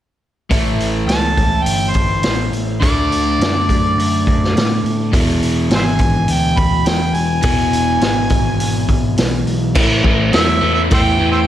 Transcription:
0.50 A1 A2 E3 A3, kick, open hi-hat
0.79 A1, open hi-hat
1.07 C#2 A5, snare, open hi-hat
1.37 C#2, kick, open hi-hat
1.62 G1 G5, open hi-hat
1.90 C5, open hi-hat
1.95 G1, kick
2.23 A1, snare, open hi-hat
2.52 A1, open hi-hat
2.80 D2 D3 A3 D4 D5, kick, open hi-hat
3.11 D2, open hi-hat
3.40 F#2, snare, open hi-hat
3.69 F#2, kick, open hi-hat
3.98 F#2, open hi-hat
4.27 F#2, kick, open hi-hat
4.44 snare
4.55 A2, snare, open hi-hat
4.84 A2, open hi-hat
5.12 E1 E2 B2 E3, kick, open hi-hat
5.41 E1, open hi-hat
5.70 G#1, snare, open hi-hat
5.75 C5 E5 G#5
5.99 G#1, kick, open hi-hat
6.28 D2, open hi-hat
6.32 G5
6.57 D2 B5, kick, open hi-hat
6.85 E1 G5, snare, open hi-hat
7.14 E1 G#5, open hi-hat
7.42 E1 E2 B2 E3, kick, open hi-hat
7.71 E1, open hi-hat
8.01 G#1, snare, open hi-hat
8.30 G#1, kick, open hi-hat
8.58 G#1, open hi-hat
8.88 G#1, kick, open hi-hat
9.17 B1, snare, open hi-hat
9.45 B1, open hi-hat
9.75 A1 A2 E3, kick, crash
10.04 A1 A2 E3, kick
10.32 E2 A2 F#3 E5, snare, open hi-hat
10.61 E2 A2 E3
10.74 E5
10.90 E2 A2 E3 C5 E5 G5, kick, open hi-hat
11.19 E2 A2 E3
11.32 C5 E5 G5

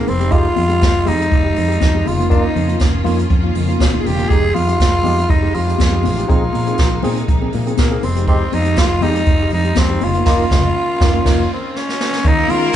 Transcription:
Already playing: G#3 A#3
0.06 F1 D#3 F3 G3 C4 F4, open hi-hat, high conga
0.20 G#3 D#4 G4, closed hi-hat
0.31 G#3 D#4 F4 G4, kick, closed hi-hat
0.44 muted conga
0.56 F2 F3, open hi-hat, high conga
0.69 G#3 D#4 G4, closed hi-hat
0.81 F1, kick, snare, closed hi-hat, muted conga
1.06 F2 G#3 D#4 G4, open hi-hat, high conga, low conga
1.21 closed hi-hat
1.30 F1, kick, closed hi-hat, muted conga, low conga
1.43 G#3 D#4 G4
1.55 F2 F3, open hi-hat
1.67 G#3 D#4 G4, closed hi-hat
1.80 F2, kick, snare, closed hi-hat, high conga
1.94 G#3 D#4 G4, muted conga
2.05 F1 C#3 G#3 A#3 C#4 F4, open hi-hat, high conga
2.18 A#3 D#4 F4, closed hi-hat
2.30 A#3 D#4 F4, kick, closed hi-hat
2.44 muted conga
2.55 F2 C#3 G#3, open hi-hat, high conga
2.68 A#3 D#4 F4, closed hi-hat
2.79 F1, kick, snare, closed hi-hat, muted conga
2.94 muted conga
3.04 F2 A#3 D#4 F4, open hi-hat, high conga, low conga
3.19 closed hi-hat
3.30 F2, kick, closed hi-hat, muted conga, low conga
3.43 A#3 D#4 F4, muted conga
3.55 F2 C#3 G#3, open hi-hat
3.67 A#3 D#4 F4, closed hi-hat
3.79 D#1, kick, snare, closed hi-hat, high conga
3.93 A#3 D#4 F4, muted conga
4.00 G#4
4.04 E1 C#3 G#3 G4, open hi-hat, high conga
4.18 A#3 D#4 F4, closed hi-hat
4.29 F1 G3 G#3 D#4 G4 G#4, kick, closed hi-hat, muted conga
4.42 muted conga
4.54 F2 F3 F4, open hi-hat, high conga
4.67 G#3 D#4 G4, closed hi-hat
4.80 F1, kick, snare, closed hi-hat
5.03 F2 G#3 D#4 G4, open hi-hat, high conga, low conga
5.19 closed hi-hat
5.29 F1 D#4, kick, closed hi-hat, low conga
5.42 G#3 D#4 G4, muted conga
5.54 F2 F3 F4, open hi-hat
5.66 G#3 D#4 G4, closed hi-hat
5.78 F2, kick, snare, closed hi-hat, muted conga, high conga
5.92 G#3 D#4 G4
6.03 A1 F3, open hi-hat, high conga
6.17 G#3 D#4 G4, closed hi-hat
6.28 A#1 C3 A#3 C4 D#4 F4 G#4, kick, closed hi-hat
6.53 A#2 F3, open hi-hat, high conga
6.66 C4 D#4 G#4, closed hi-hat
6.78 A#1, kick, snare, closed hi-hat
6.92 muted conga
7.03 A#2 C4 D#4 G#4, open hi-hat, high conga, low conga
7.17 closed hi-hat
7.28 A#1, kick, closed hi-hat, muted conga, low conga
7.41 C4 D#4 G#4, muted conga
7.52 A#2 F3, open hi-hat
7.66 C4 D#4 G#4, closed hi-hat
7.77 A#2 A#3, kick, snare, closed hi-hat, muted conga, high conga
7.90 C4 D#4 G#4
8.03 F1 D#3 F3 G3 G#3 C4 F4, open hi-hat, high conga
8.16 G#3 D#4 G4, closed hi-hat
8.27 G#3 C4 D#4 G4, kick, closed hi-hat, muted conga
8.52 F2 F3 D#4, open hi-hat, high conga
8.65 G#3 D#4 G4, closed hi-hat
8.76 F1 F4, kick, snare, closed hi-hat
9.01 F2 G#3 D#4 G4, open hi-hat, high conga, low conga
9.16 closed hi-hat
9.26 F1, kick, closed hi-hat, low conga
9.39 G#3 D#4 G4
9.50 F2 F3 D#4, open hi-hat
9.64 G#3 D#4 G4, closed hi-hat
9.75 F2 C4, kick, snare, closed hi-hat, high conga
9.89 G#3 D#4 G4, muted conga
10.01 F1 C#3 G#3 A#3 C#4 F4, open hi-hat, high conga
10.14 A#3 D#4 F4, closed hi-hat
10.25 F1 A#3 D#4 F4, kick, snare, crash
10.51 F1 C#3 G#3, kick, snare
11.01 F1 A#3 D#4 F4, kick, snare
11.25 F1 A#3 D#4 F4, kick, snare, crash
11.53 C4
11.76 C#4, snare
11.89 snare
12.01 snare
12.13 snare
12.23 D#2 D#3 G#3 A#3 C#4 D#4 F4 A#4, kick, closed hi-hat, muted conga
12.37 C#4 F4
12.48 D#3 G#3 C#4 F4, open hi-hat, high conga

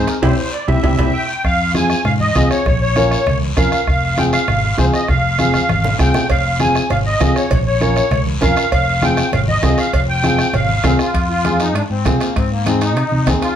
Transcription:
Already playing: C4 D#4 G#4
0.07 A#4, bombo rim, high timbale, short guiro
0.22 C2 C4 E4 G4 C5, bombo low, low conga, high timbale, long guiro
0.38 C5
0.53 D5
0.68 C2 C4 E4 G4 E5, bombo low, low conga, high timbale, long guiro
0.83 C2 C4 E4 G4, bombo low, low conga, high timbale, long guiro
0.98 C4 E4 G4, bombo low, low conga, high timbale, long guiro
1.13 G5
1.45 F2 F5, bombo low, bombo rim, long guiro
1.74 C4 F4 G#4 G#5, bombo rim, high conga, short guiro
1.90 bombo rim, short guiro
2.05 G#2 F5, bombo rim, low conga, long guiro
2.20 D#5, high conga
2.35 C2 C4 F4 G#4, bombo low, bombo rim, high conga, short guiro
2.51 C#5, bombo rim, short guiro
2.66 A#1 C#5, bombo low, bombo rim, low conga, long guiro
2.82 C#5
2.96 C#4 F4 A#4, bombo rim, high conga, short guiro
3.11 bombo rim, short guiro
3.26 C#2, bombo rim, low conga, long guiro
3.42 high conga
3.57 F2 C#4 F4 A#4 F5, bombo low, bombo rim, high conga, low conga, short guiro
3.72 bombo rim, short guiro
3.87 F1 F5, bombo low, bombo rim, long guiro
4.17 C4 F4 G#4 G5, bombo rim, high conga, short guiro
4.32 F5, bombo rim, short guiro
4.48 G#1, bombo rim, low conga, long guiro
4.77 C2 C4 F4 G#4 C5, bombo low, bombo rim, high conga, short guiro
4.94 D#5, bombo rim, short guiro
5.08 F1 F5, bombo low, bombo rim, low conga, long guiro
5.39 C4 F4 G#4, bombo rim, high conga, short guiro
5.54 bombo rim, high conga, short guiro
5.69 G#1, bombo rim, high conga, long guiro
5.84 low conga
5.99 C2 C4 F4 G#4 G5, bombo low, bombo rim, short guiro
6.14 bombo rim, low conga, short guiro
6.30 F1 F5, bombo low, bombo rim, cowbell, long guiro
6.59 C4 F4 G#4 G#5, bombo rim, high conga, short guiro
6.75 bombo rim, short guiro
6.90 G#1 F5, bombo rim, cowbell, low conga, long guiro
7.06 D#5
7.20 C2 C4 F4 G#4, bombo low, bombo rim, high conga, low timbale, short guiro
7.36 C#5, bombo rim, short guiro
7.51 A#1 C#5, bombo low, bombo rim, cowbell, low conga, long guiro
7.66 C#5
7.81 C#4 F4 A#4, bombo rim, high conga, short guiro
7.96 bombo rim, short guiro
8.11 C#2, bombo rim, cowbell, low conga, long guiro
8.27 high conga
8.41 F2 C#4 F4 A#4 F5, bombo low, bombo rim, high conga, low conga, short guiro
8.57 bombo rim, short guiro
8.72 F1 F5, bombo low, bombo rim, cowbell, long guiro
9.02 C4 F4 G#4 G5, bombo rim, high conga, short guiro
9.17 bombo rim, short guiro
9.32 G#1 F5, bombo rim, cowbell, low conga, long guiro
9.48 D#5, high conga
9.62 C2 C4 F4 G#4, bombo low, bombo rim, high conga, low timbale, short guiro
9.78 F5, bombo rim, short guiro
9.93 F1 F5, bombo low, bombo rim, cowbell, long guiro
10.09 G5
10.23 C4 F4 G#4, bombo rim, high conga, short guiro
10.39 bombo rim, short guiro
10.53 G#1 F5, bombo rim, cowbell, low conga, long guiro
10.69 high conga
10.84 C2 C4 F4 G#4, bombo low, bombo rim, high conga, low timbale, short guiro
10.99 F4, bombo rim, short guiro
11.14 F2, bombo low, bombo rim, high timbale, long guiro
11.30 F4
11.44 C4 F4 G#4, bombo rim, high conga, high timbale, short guiro
11.60 D#4, bombo rim, high timbale, short guiro
11.75 G#2 D4, bombo rim, high timbale, long guiro
11.90 G#2 C4
12.05 C2 C4 F4 G#4, bombo low, bombo rim, high conga, high timbale, low timbale, short guiro
12.21 A#3, bombo rim, high timbale, short guiro
12.36 G#2 C4, bombo low, bombo rim, high timbale, long guiro
12.51 A#3
12.66 C4 D#4 G#4, bombo rim, high conga, high timbale, short guiro
12.81 D#4, bombo rim, high timbale, short guiro
12.96 C3, bombo rim, high timbale, long guiro
13.12 C3, high conga
13.27 D#2 C4 D#4 G#4, bombo low, bombo rim, high conga, high timbale, low timbale, short guiro
13.42 F4, bombo rim, high timbale, short guiro

